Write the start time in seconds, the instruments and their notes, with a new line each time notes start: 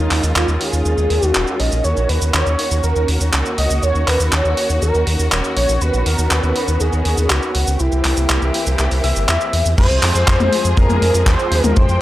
Already playing: string section D#3 G#3 C#4 F4, analog synth lead D#4
0.11 analog synth bass D#2, clap, open hi-hat
0.23 analog synth bass D#2, cabasa
0.35 analog synth bass D#2, analog synth lead F4, clap, cabasa
0.48 analog synth bass D#2, cabasa
0.60 analog synth lead G#4, open hi-hat
0.73 analog synth bass D#2, cabasa
0.85 analog synth bass D#2, cabasa
0.98 analog synth bass D#2, cabasa
1.10 analog synth bass D#2, open hi-hat
1.23 analog synth bass D#2, cabasa
1.27 analog synth lead F#4
1.35 analog synth bass D#1, clap, cabasa
1.47 cabasa
1.60 analog synth bass A#1, analog synth lead D#5, open hi-hat
1.72 analog synth bass A#1, cabasa
1.84 analog synth bass D#2, string section A#3 F#4, analog synth lead C#5, cabasa
1.97 analog synth bass A#1, cabasa
2.09 analog synth bass D#2, analog synth lead B4, open hi-hat
2.22 analog synth bass D#2, cabasa
2.34 analog synth bass D#2, analog synth lead C#5, clap, cabasa
2.46 analog synth bass D#2, cabasa
2.59 open hi-hat
2.71 analog synth bass D#2, cabasa
2.83 analog synth bass D#2, analog synth lead A#4, cabasa
2.96 analog synth bass D#2, cabasa
3.08 analog synth bass D#2, open hi-hat
3.21 analog synth bass D#2, cabasa
3.33 analog synth bass C#2, clap, cabasa
3.46 cabasa
3.58 analog synth bass C#2, analog synth lead D#5, open hi-hat
3.70 analog synth bass C#2, cabasa
3.83 analog synth bass D#2, analog synth lead C#5, cabasa
3.95 analog synth bass D#2, cabasa
4.08 analog synth bass D#2, analog synth lead B4, clap, open hi-hat
4.20 analog synth bass D#2, cabasa
4.32 analog synth bass D#2, analog synth lead C#5, clap, cabasa
4.45 analog synth bass D#2, cabasa
4.57 open hi-hat
4.70 analog synth bass D#2, cabasa
4.82 analog synth bass D#2, analog synth lead A#4, cabasa
4.95 analog synth bass D#2, cabasa
5.07 analog synth bass D#2, open hi-hat
5.19 analog synth bass D#2, cabasa
5.32 analog synth bass D#1, clap, cabasa
5.44 cabasa
5.57 analog synth bass A#1, analog synth lead C#5, open hi-hat
5.69 analog synth bass A#1, cabasa
5.81 analog synth bass D#2, string section D#3 B3, analog synth lead B4, cabasa
5.94 analog synth bass A#1, cabasa
6.06 analog synth bass D#2, analog synth lead A#4, open hi-hat
6.18 analog synth bass D#2, cabasa
6.31 analog synth bass D#2, analog synth lead B4, clap, cabasa
6.43 analog synth bass D#2, cabasa
6.56 open hi-hat
6.68 analog synth bass D#2, cabasa
6.80 analog synth bass D#2, analog synth lead G#4, cabasa
6.93 analog synth bass D#2, cabasa
7.05 analog synth bass D#2, open hi-hat
7.18 analog synth bass D#2, cabasa
7.30 analog synth bass C#2, analog synth lead F#4, clap, cabasa
7.42 cabasa
7.55 analog synth bass C#2, open hi-hat
7.67 analog synth bass C#2, cabasa
7.80 analog synth bass C2, string section E3 A#3 C4 G4, analog synth lead E4, cabasa
7.92 analog synth bass C2, cabasa
8.04 analog synth bass C2, clap, open hi-hat
8.17 analog synth bass C2, cabasa
8.29 analog synth bass C2, clap, cabasa
8.42 analog synth bass C2, cabasa
8.54 open hi-hat
8.66 analog synth bass C2, cabasa
8.79 analog synth bass C2, clap, cabasa
8.91 analog synth bass C2, open hi-hat, cabasa
9.03 analog synth bass C2, analog synth lead E5, open hi-hat
9.16 analog synth bass G1, cabasa
9.28 analog synth bass E2, clap, cabasa
9.41 cabasa
9.53 analog synth bass E2, open hi-hat
9.65 analog synth bass E2, cabasa
9.78 analog synth bass F2, string section F3 G#3 C4 G#4, analog synth lead C5, kick, closed hi-hat, crash, cabasa
9.90 analog synth bass C2, closed hi-hat, cabasa
10.03 analog synth bass F2, clap, open hi-hat
10.15 analog synth bass F2, closed hi-hat, cabasa
10.28 analog synth bass F2, kick, clap, cabasa
10.40 analog synth bass F2, closed hi-hat, high tom, cabasa
10.53 open hi-hat
10.65 analog synth bass F2, closed hi-hat, cabasa
10.77 analog synth bass F2, analog synth lead A#4, kick, closed hi-hat, cabasa
10.89 analog synth bass F2, closed hi-hat, high tom, cabasa
11.02 analog synth bass F2, open hi-hat
11.14 analog synth bass F2, closed hi-hat, cabasa
11.26 analog synth bass D#2, analog synth lead C5, kick, clap, cabasa
11.39 closed hi-hat, cabasa
11.51 analog synth bass D#2, open hi-hat
11.64 analog synth bass D#2, closed hi-hat, high tom, cabasa
11.76 analog synth bass F2, analog synth lead C5, string section G5, kick, closed hi-hat, cabasa
11.89 analog synth bass F2, closed hi-hat, cabasa